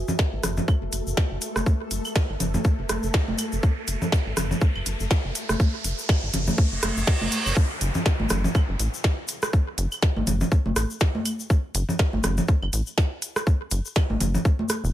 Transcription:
Already playing: synth texture A3 A4, ambient pad F#4 B4 E5, riser
0.08 low conga, shaker
0.19 kick, snare, shaker
0.33 analog synth bass G#1
0.43 analog synth bass F#1, cross-stick, open hi-hat, low conga, shaker
0.57 low conga, shaker
0.68 kick, claves, shaker
0.82 analog synth bass F#1
0.92 analog synth bass F#1, open hi-hat, shaker
1.07 analog synth bass F#1, shaker
1.17 kick, snare, shaker
1.31 analog synth bass F#1
1.42 open hi-hat, shaker
1.56 analog synth bass F#1, cross-stick, high conga, shaker
1.66 kick, shaker
1.91 analog synth bass F#1, open hi-hat, shaker
2.05 claves, shaker
2.16 kick, snare, shaker
2.30 analog synth bass G#1
2.40 analog synth bass F#1, open hi-hat, low conga, shaker
2.54 high conga, low conga, shaker
2.64 kick, shaker
2.79 analog synth bass F#1
2.89 analog synth bass F#1, cross-stick, open hi-hat, high conga, shaker
3.03 analog synth bass F#1, shaker
3.13 kick, snare, shaker
3.28 analog synth bass F#1, high conga
3.38 open hi-hat, claves, shaker
3.52 analog synth bass F#1, shaker
3.63 kick, shaker
3.88 analog synth bass F#1, open hi-hat, shaker
4.02 low conga, shaker
4.12 kick, snare, shaker
4.26 analog synth bass G#1
4.37 analog synth bass F#1, cross-stick, open hi-hat, low conga, shaker
4.51 low conga, shaker
4.61 kick, shaker
4.76 analog synth bass F#1, claves
4.86 analog synth bass F#1, open hi-hat, shaker
5.00 analog synth bass F#1, shaker
5.11 kick, snare, shaker
5.25 analog synth bass F#1
5.35 open hi-hat, shaker
5.49 analog synth bass F#1, cross-stick, high conga, shaker
5.60 kick, shaker
5.84 analog synth bass F#1, open hi-hat, shaker
5.99 shaker
6.09 kick, snare, claves, shaker
6.23 analog synth bass G#1
6.34 analog synth bass F#1, open hi-hat, low conga, shaker
6.47 high conga, low conga, shaker
6.58 kick, reverse cymbal, shaker
6.72 analog synth bass F#1
6.82 analog synth bass F#1, cross-stick, open hi-hat, high conga, shaker
6.97 analog synth bass F#1, shaker
7.07 kick, snare, shaker
7.21 analog synth bass F#1, high conga
7.32 open hi-hat, shaker
7.46 analog synth bass F#1, claves, shaker
7.57 kick, downlifter, shaker
7.81 analog synth bass F#1, open hi-hat, shaker
7.94 low conga, shaker
8.06 kick, snare, shaker
8.20 analog synth bass G#1, high conga
8.29 analog synth bass F#1, cross-stick, open hi-hat, low conga, shaker
8.44 low conga, shaker
8.55 kick, claves, shaker
8.69 analog synth bass F#1
8.79 analog synth bass A1, open hi-hat, shaker
8.94 shaker
9.04 kick, snare, shaker
9.28 open hi-hat, shaker
9.42 cross-stick, shaker
9.53 kick, shaker
9.78 analog synth bass F#1, open hi-hat, shaker
9.92 claves, shaker
10.02 kick, snare, shaker
10.16 analog synth bass G#1, high conga
10.27 analog synth bass F#1, open hi-hat, low conga, shaker
10.41 low conga, shaker
10.52 kick, shaker
10.66 analog synth bass F#1, high conga
10.76 analog synth bass A1, cross-stick, open hi-hat, shaker
10.90 shaker
11.00 kick, snare, shaker
11.15 high conga
11.25 open hi-hat, claves, shaker
11.40 shaker
11.50 kick, shaker
11.75 analog synth bass F#1, open hi-hat, shaker
11.89 low conga, shaker
11.99 kick, snare, shaker
12.13 analog synth bass G#1, high conga
12.24 analog synth bass F#1, cross-stick, open hi-hat, low conga, shaker
12.37 low conga, shaker
12.48 kick, shaker
12.62 analog synth bass F#1, claves
12.73 analog synth bass A1, open hi-hat, shaker
12.87 shaker
12.98 kick, snare, shaker
13.22 open hi-hat, shaker
13.36 cross-stick, shaker
13.47 kick, shaker
13.71 analog synth bass F#1, open hi-hat, shaker
13.85 shaker
13.96 kick, snare, claves, shaker
14.10 analog synth bass G#1, high conga
14.21 analog synth bass F#1, open hi-hat, low conga, shaker
14.35 low conga, shaker
14.45 kick, shaker
14.59 high conga
14.69 cross-stick, open hi-hat, shaker
14.84 analog synth bass E1, shaker

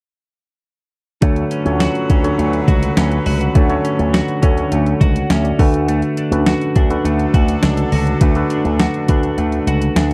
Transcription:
1.21 slap bass D2, tine electric piano D3 D4 F#4 A4 C#5, horn section D3 F#3 B4, clean electric guitar A3, kick, closed hi-hat
1.36 closed hi-hat
1.51 clean electric guitar C#4, closed hi-hat
1.65 slap bass D2, tine electric piano C#4 F4 A4 C#5, closed hi-hat
1.72 tine electric piano F#4
1.80 clean electric guitar F#4, snare, closed hi-hat
1.95 closed hi-hat
2.10 slap bass D2, clean electric guitar C#4, kick, closed hi-hat
2.23 tine electric piano D3 F#4 A4 C#5, closed hi-hat
2.38 slap bass D2, clean electric guitar A3, closed hi-hat
2.53 closed hi-hat
2.68 slap bass C#2, clean electric guitar F#4, kick, closed hi-hat
2.83 closed hi-hat
2.97 slap bass D2, clean electric guitar C#4, snare, closed hi-hat
3.12 closed hi-hat
3.26 slap bass C#2, clean electric guitar F#4, open hi-hat
3.41 closed hi-hat
3.55 slap bass D2, tine electric piano D3 D4 F#4 A4 C#5, clean electric guitar A3, kick, closed hi-hat
3.69 tine electric piano C#4 F#4 A4 C#5, closed hi-hat
3.84 clean electric guitar C#4, closed hi-hat
3.99 slap bass D2, closed hi-hat
4.13 clean electric guitar F#4, snare, closed hi-hat
4.28 closed hi-hat
4.42 slap bass D2, tine electric piano D3 F#4 A4 C#5, clean electric guitar C#4, kick, closed hi-hat
4.58 closed hi-hat
4.71 slap bass D2, clean electric guitar A3, closed hi-hat
4.86 closed hi-hat
5.01 slap bass C#2, clean electric guitar F#4, tine electric piano F#5, kick, closed hi-hat
5.16 closed hi-hat
5.30 slap bass D2, clean electric guitar C#4, tine electric piano E5, snare, closed hi-hat
5.44 tine electric piano D5, closed hi-hat
5.59 slap bass D2, tine electric piano D3 D4 F#4 A4 B4, clean electric guitar A3, kick, open hi-hat
5.74 closed hi-hat
5.88 clean electric guitar A3, closed hi-hat
6.02 closed hi-hat
6.17 clean electric guitar D4, closed hi-hat
6.31 slap bass D2, tine electric piano C#4 F#4 A4 B4, closed hi-hat
6.38 tine electric piano D4
6.46 clean electric guitar F#4, snare, closed hi-hat
6.61 closed hi-hat
6.76 slap bass D2, horn section F#3 D4 A4, clean electric guitar D4, kick, closed hi-hat
6.90 tine electric piano D4 F#4 A4 B4, closed hi-hat
7.04 slap bass D2, clean electric guitar A3, closed hi-hat
7.19 closed hi-hat
7.34 slap bass D2, clean electric guitar F#4, kick, closed hi-hat
7.48 closed hi-hat
7.63 slap bass C#2, clean electric guitar D4, snare, closed hi-hat
7.77 closed hi-hat
7.92 slap bass C#2, tine electric piano D3, clean electric guitar F#4, open hi-hat
8.07 closed hi-hat
8.21 slap bass D2, clean electric guitar A3, tine electric piano D4 F#4 A4 B4, kick, closed hi-hat
8.35 tine electric piano D4 F#4 A4 B4, closed hi-hat
8.50 clean electric guitar D4, closed hi-hat
8.65 slap bass D2, closed hi-hat
8.80 clean electric guitar F#4, snare, closed hi-hat
8.94 closed hi-hat
9.08 slap bass D2, tine electric piano D4 F#4 A4 B4, clean electric guitar D4, kick, closed hi-hat
9.23 closed hi-hat
9.37 slap bass D2, clean electric guitar A3, closed hi-hat
9.52 closed hi-hat
9.67 slap bass C#2, clean electric guitar F#4, closed hi-hat
9.82 closed hi-hat
9.96 slap bass D2, clean electric guitar D4, snare, closed hi-hat

